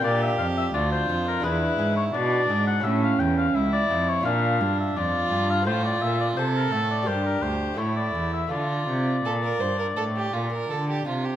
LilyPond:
<<
  \new Staff \with { instrumentName = "Oboe" } { \time 4/4 \key d \minor \tempo 4 = 85 d''16 e''16 f''16 e''16 d''16 c''8 bes'16 b'8. cis''16 d''8. fis''16 | e''16 f''16 g''16 f''16 e''16 d''8 cis''16 f''8. e''16 d''8. f''16 | c''16 d''16 e''16 d''16 c''16 bes'16 a'16 d''16 c''16 bes'16 c''8 cis''16 d''8 e''16 | d''2.~ d''8 r8 | }
  \new Staff \with { instrumentName = "Violin" } { \time 4/4 \key d \minor g'4 f'4 e'4 d'4 | cis'4 e'4 d'4 f'4 | f'4 a'4 g'4 e'4 | f'4 a'16 bes'16 c''16 bes'16 a'16 g'16 f'16 bes'16 a'16 g'16 f'16 g'16 | }
  \new Staff \with { instrumentName = "Lute" } { \time 4/4 \key d \minor <d' f' bes'>2 <d' e' gis'>2 | <cis' e' g'>2 <d' f'>2 | <c' f' a'>2 <d' g' bes'>4 <a e' a'>4 | <a f' a'>1 | }
  \new Staff \with { instrumentName = "Lute" } { \clef bass \time 4/4 \key d \minor bes,8 f,8 d,8 f,8 e,8 gis,8 b,8 gis,8 | a,8 e,8 r8 f,8 bes,8 g,8 f,8 g,8 | a,8 bes,8 c8 a,8 g,8 d,8 a,8 e,8 | d8 c8 bes,8 g,8 a,8 bes,8 d8 c8 | }
  \new Staff \with { instrumentName = "Cello" } { \clef bass \time 4/4 \key d \minor bes,8 f,8 d,8 f,8 e,8 gis,8 b,8 gis,8 | a,8 e,8 cis,8 f,8 bes,8 g,8 f,8 g,8 | a,8 bes,8 c8 a,8 g,8 d,8 a,8 e,8 | d8 c8 bes,8 g,8 a,8 bes,8 d8 c8 | }
>>